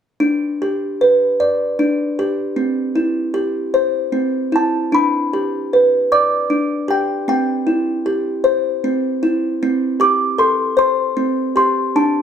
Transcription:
0, 0, Header, 1, 2, 480
1, 0, Start_track
1, 0, Key_signature, 1, "major"
1, 0, Tempo, 788436
1, 127, Time_signature, 6, 3, 24, 8
1, 3962, Tempo, 778210
1, 7485, End_track
2, 0, Start_track
2, 0, Title_t, "Music box"
2, 0, Program_c, 0, 10
2, 122, Note_on_c, 0, 62, 59
2, 376, Note_on_c, 0, 67, 54
2, 616, Note_on_c, 0, 71, 53
2, 852, Note_on_c, 0, 74, 72
2, 1083, Note_off_c, 0, 62, 0
2, 1091, Note_on_c, 0, 62, 54
2, 1326, Note_off_c, 0, 67, 0
2, 1333, Note_on_c, 0, 67, 59
2, 1561, Note_off_c, 0, 74, 0
2, 1561, Note_on_c, 0, 60, 62
2, 1562, Note_off_c, 0, 62, 0
2, 1562, Note_off_c, 0, 71, 0
2, 1565, Note_off_c, 0, 67, 0
2, 1799, Note_on_c, 0, 64, 56
2, 2033, Note_on_c, 0, 67, 58
2, 2276, Note_on_c, 0, 72, 72
2, 2503, Note_off_c, 0, 60, 0
2, 2510, Note_on_c, 0, 60, 64
2, 2746, Note_off_c, 0, 64, 0
2, 2753, Note_on_c, 0, 64, 62
2, 2774, Note_on_c, 0, 81, 70
2, 2880, Note_off_c, 0, 81, 0
2, 2997, Note_on_c, 0, 62, 60
2, 2998, Note_off_c, 0, 60, 0
2, 2998, Note_off_c, 0, 64, 0
2, 2999, Note_off_c, 0, 67, 0
2, 3001, Note_off_c, 0, 72, 0
2, 3010, Note_on_c, 0, 83, 76
2, 3247, Note_on_c, 0, 67, 56
2, 3490, Note_on_c, 0, 71, 52
2, 3725, Note_on_c, 0, 86, 78
2, 3727, Note_on_c, 0, 74, 70
2, 3751, Note_off_c, 0, 83, 0
2, 3950, Note_off_c, 0, 62, 0
2, 3957, Note_on_c, 0, 62, 55
2, 4186, Note_off_c, 0, 67, 0
2, 4193, Note_on_c, 0, 67, 57
2, 4207, Note_on_c, 0, 79, 67
2, 4217, Note_off_c, 0, 86, 0
2, 4436, Note_off_c, 0, 67, 0
2, 4437, Note_off_c, 0, 79, 0
2, 4438, Note_off_c, 0, 62, 0
2, 4438, Note_on_c, 0, 60, 65
2, 4442, Note_off_c, 0, 74, 0
2, 4443, Note_off_c, 0, 71, 0
2, 4444, Note_on_c, 0, 79, 66
2, 4676, Note_on_c, 0, 64, 58
2, 4919, Note_on_c, 0, 67, 60
2, 4956, Note_off_c, 0, 79, 0
2, 5153, Note_on_c, 0, 72, 76
2, 5394, Note_off_c, 0, 60, 0
2, 5401, Note_on_c, 0, 60, 59
2, 5632, Note_off_c, 0, 64, 0
2, 5639, Note_on_c, 0, 64, 57
2, 5878, Note_off_c, 0, 60, 0
2, 5879, Note_off_c, 0, 72, 0
2, 5881, Note_off_c, 0, 64, 0
2, 5881, Note_off_c, 0, 67, 0
2, 5885, Note_on_c, 0, 60, 71
2, 6115, Note_on_c, 0, 67, 59
2, 6121, Note_on_c, 0, 86, 82
2, 6353, Note_on_c, 0, 69, 58
2, 6358, Note_on_c, 0, 84, 80
2, 6368, Note_off_c, 0, 86, 0
2, 6581, Note_off_c, 0, 84, 0
2, 6590, Note_on_c, 0, 72, 80
2, 6601, Note_on_c, 0, 84, 81
2, 6828, Note_off_c, 0, 60, 0
2, 6835, Note_on_c, 0, 60, 66
2, 7069, Note_off_c, 0, 67, 0
2, 7076, Note_off_c, 0, 84, 0
2, 7076, Note_on_c, 0, 67, 63
2, 7083, Note_on_c, 0, 84, 79
2, 7315, Note_off_c, 0, 72, 0
2, 7316, Note_off_c, 0, 69, 0
2, 7319, Note_off_c, 0, 60, 0
2, 7319, Note_off_c, 0, 67, 0
2, 7323, Note_on_c, 0, 62, 72
2, 7325, Note_on_c, 0, 81, 65
2, 7330, Note_off_c, 0, 84, 0
2, 7485, Note_off_c, 0, 62, 0
2, 7485, Note_off_c, 0, 81, 0
2, 7485, End_track
0, 0, End_of_file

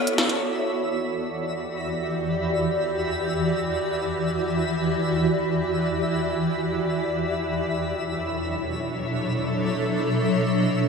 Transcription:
0, 0, Header, 1, 4, 480
1, 0, Start_track
1, 0, Tempo, 500000
1, 10449, End_track
2, 0, Start_track
2, 0, Title_t, "Synth texture"
2, 0, Program_c, 0, 99
2, 0, Note_on_c, 0, 64, 80
2, 0, Note_on_c, 0, 76, 83
2, 377, Note_off_c, 0, 64, 0
2, 377, Note_off_c, 0, 76, 0
2, 389, Note_on_c, 0, 64, 75
2, 389, Note_on_c, 0, 76, 80
2, 10449, Note_off_c, 0, 64, 0
2, 10449, Note_off_c, 0, 76, 0
2, 10449, End_track
3, 0, Start_track
3, 0, Title_t, "Ambient pad"
3, 0, Program_c, 1, 92
3, 0, Note_on_c, 1, 59, 81
3, 0, Note_on_c, 1, 66, 74
3, 0, Note_on_c, 1, 69, 74
3, 0, Note_on_c, 1, 73, 77
3, 0, Note_on_c, 1, 74, 91
3, 348, Note_off_c, 1, 69, 0
3, 349, Note_off_c, 1, 59, 0
3, 349, Note_off_c, 1, 73, 0
3, 350, Note_off_c, 1, 66, 0
3, 350, Note_off_c, 1, 74, 0
3, 386, Note_on_c, 1, 40, 78
3, 386, Note_on_c, 1, 67, 69
3, 386, Note_on_c, 1, 74, 86
3, 387, Note_on_c, 1, 52, 72
3, 387, Note_on_c, 1, 66, 71
3, 7175, Note_off_c, 1, 40, 0
3, 7175, Note_off_c, 1, 67, 0
3, 7175, Note_off_c, 1, 74, 0
3, 7176, Note_off_c, 1, 52, 0
3, 7176, Note_off_c, 1, 66, 0
3, 7213, Note_on_c, 1, 47, 78
3, 7213, Note_on_c, 1, 54, 72
3, 7213, Note_on_c, 1, 62, 72
3, 7213, Note_on_c, 1, 73, 86
3, 7214, Note_on_c, 1, 69, 74
3, 10449, Note_off_c, 1, 47, 0
3, 10449, Note_off_c, 1, 54, 0
3, 10449, Note_off_c, 1, 62, 0
3, 10449, Note_off_c, 1, 69, 0
3, 10449, Note_off_c, 1, 73, 0
3, 10449, End_track
4, 0, Start_track
4, 0, Title_t, "Drums"
4, 68, Note_on_c, 9, 42, 55
4, 164, Note_off_c, 9, 42, 0
4, 175, Note_on_c, 9, 38, 114
4, 271, Note_off_c, 9, 38, 0
4, 282, Note_on_c, 9, 42, 39
4, 378, Note_off_c, 9, 42, 0
4, 10449, End_track
0, 0, End_of_file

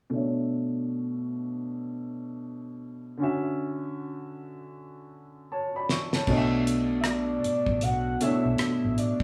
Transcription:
0, 0, Header, 1, 6, 480
1, 0, Start_track
1, 0, Key_signature, 2, "minor"
1, 0, Tempo, 769231
1, 74, Time_signature, 4, 2, 24, 8
1, 5762, End_track
2, 0, Start_track
2, 0, Title_t, "Soft synth lead"
2, 0, Program_c, 0, 80
2, 4372, Note_on_c, 0, 76, 62
2, 4401, Note_on_c, 0, 74, 90
2, 4410, Note_off_c, 0, 76, 0
2, 4886, Note_on_c, 0, 78, 109
2, 4895, Note_off_c, 0, 74, 0
2, 5126, Note_on_c, 0, 76, 100
2, 5136, Note_off_c, 0, 78, 0
2, 5605, Note_on_c, 0, 74, 88
2, 5614, Note_off_c, 0, 76, 0
2, 5762, Note_off_c, 0, 74, 0
2, 5762, End_track
3, 0, Start_track
3, 0, Title_t, "Upright piano"
3, 0, Program_c, 1, 0
3, 61, Note_on_c, 1, 47, 57
3, 71, Note_on_c, 1, 57, 52
3, 82, Note_on_c, 1, 62, 51
3, 90, Note_on_c, 1, 73, 54
3, 98, Note_on_c, 1, 76, 60
3, 172, Control_c, 1, 64, 127
3, 1962, Note_off_c, 1, 47, 0
3, 1967, Note_off_c, 1, 57, 0
3, 1973, Note_off_c, 1, 62, 0
3, 1976, Note_off_c, 1, 73, 0
3, 1981, Note_off_c, 1, 76, 0
3, 1981, Note_on_c, 1, 50, 60
3, 1994, Note_on_c, 1, 61, 53
3, 2002, Control_c, 1, 64, 0
3, 2008, Note_on_c, 1, 66, 52
3, 2017, Note_on_c, 1, 76, 67
3, 2130, Control_c, 1, 64, 127
3, 3420, Note_off_c, 1, 76, 0
3, 3443, Note_on_c, 1, 81, 53
3, 3448, Note_on_c, 1, 73, 47
3, 3580, Note_off_c, 1, 81, 0
3, 3583, Note_off_c, 1, 73, 0
3, 3594, Note_on_c, 1, 83, 57
3, 3598, Note_on_c, 1, 74, 44
3, 3642, Note_off_c, 1, 50, 0
3, 3649, Note_off_c, 1, 61, 0
3, 3656, Note_off_c, 1, 66, 0
3, 3675, Note_off_c, 1, 83, 0
3, 3677, Note_off_c, 1, 74, 0
3, 3685, Note_on_c, 1, 85, 53
3, 3686, Note_on_c, 1, 76, 43
3, 3821, Note_off_c, 1, 76, 0
3, 3821, Note_off_c, 1, 85, 0
3, 3832, Note_on_c, 1, 81, 52
3, 3836, Note_on_c, 1, 73, 38
3, 3917, Note_on_c, 1, 47, 73
3, 3920, Control_c, 1, 64, 0
3, 3923, Note_on_c, 1, 57, 69
3, 3927, Note_on_c, 1, 62, 69
3, 3933, Note_on_c, 1, 74, 68
3, 3937, Note_on_c, 1, 75, 67
3, 3975, Note_off_c, 1, 75, 0
3, 3976, Note_on_c, 1, 76, 84
3, 4033, Control_c, 1, 64, 127
3, 4055, Note_off_c, 1, 81, 0
3, 4057, Note_off_c, 1, 73, 0
3, 4813, Note_off_c, 1, 47, 0
3, 4816, Note_off_c, 1, 57, 0
3, 4818, Note_off_c, 1, 62, 0
3, 4821, Note_off_c, 1, 74, 0
3, 4842, Note_off_c, 1, 76, 0
3, 5120, Note_on_c, 1, 47, 65
3, 5125, Note_on_c, 1, 57, 56
3, 5126, Note_on_c, 1, 62, 55
3, 5132, Note_on_c, 1, 73, 49
3, 5137, Note_on_c, 1, 76, 66
3, 5762, Note_off_c, 1, 47, 0
3, 5762, Note_off_c, 1, 57, 0
3, 5762, Note_off_c, 1, 62, 0
3, 5762, Note_off_c, 1, 73, 0
3, 5762, Note_off_c, 1, 76, 0
3, 5762, End_track
4, 0, Start_track
4, 0, Title_t, "Fingered electric bass"
4, 0, Program_c, 2, 33
4, 3919, Note_on_c, 2, 35, 73
4, 4611, Note_off_c, 2, 35, 0
4, 4788, Note_on_c, 2, 33, 75
4, 4865, Note_off_c, 2, 33, 0
4, 4887, Note_on_c, 2, 35, 75
4, 5089, Note_off_c, 2, 35, 0
4, 5275, Note_on_c, 2, 35, 72
4, 5348, Note_off_c, 2, 35, 0
4, 5519, Note_on_c, 2, 33, 72
4, 5591, Note_off_c, 2, 33, 0
4, 5762, End_track
5, 0, Start_track
5, 0, Title_t, "Muted fingered electric bass strokes"
5, 4647, Note_on_c, 9, 29, 36
5, 4710, Note_off_c, 9, 29, 0
5, 5762, End_track
6, 0, Start_track
6, 0, Title_t, "Drums"
6, 3678, Note_on_c, 9, 38, 73
6, 3740, Note_off_c, 9, 38, 0
6, 3825, Note_on_c, 9, 38, 77
6, 3887, Note_off_c, 9, 38, 0
6, 3912, Note_on_c, 9, 49, 67
6, 3915, Note_on_c, 9, 36, 92
6, 3974, Note_off_c, 9, 49, 0
6, 3977, Note_off_c, 9, 36, 0
6, 4163, Note_on_c, 9, 42, 64
6, 4225, Note_off_c, 9, 42, 0
6, 4391, Note_on_c, 9, 37, 100
6, 4396, Note_on_c, 9, 42, 67
6, 4453, Note_off_c, 9, 37, 0
6, 4459, Note_off_c, 9, 42, 0
6, 4645, Note_on_c, 9, 42, 49
6, 4708, Note_off_c, 9, 42, 0
6, 4783, Note_on_c, 9, 36, 74
6, 4845, Note_off_c, 9, 36, 0
6, 4875, Note_on_c, 9, 42, 71
6, 4937, Note_off_c, 9, 42, 0
6, 5121, Note_on_c, 9, 42, 65
6, 5184, Note_off_c, 9, 42, 0
6, 5356, Note_on_c, 9, 42, 69
6, 5362, Note_on_c, 9, 37, 90
6, 5419, Note_off_c, 9, 42, 0
6, 5424, Note_off_c, 9, 37, 0
6, 5603, Note_on_c, 9, 42, 52
6, 5665, Note_off_c, 9, 42, 0
6, 5742, Note_on_c, 9, 36, 79
6, 5762, Note_off_c, 9, 36, 0
6, 5762, End_track
0, 0, End_of_file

